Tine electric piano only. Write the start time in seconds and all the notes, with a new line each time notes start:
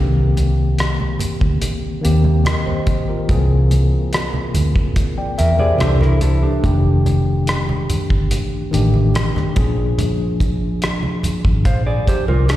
Already playing: D#3 A#3 C4 G4
2.02 D#3 A#3 C4 G4
2.46 A#4 D#5
2.66 G4 C5
3.09 F4 A#4
3.28 E3 A#3 C4 G#4
5.18 D5 G5
5.38 A#4 E5
5.60 G4 C5
5.78 E3 A#3 D4 A4
6.62 D#3 A3 D4 G4
8.71 D#3 A3 D4 G4
9.55 F3 A#3 C#4 G#4
9.63 D4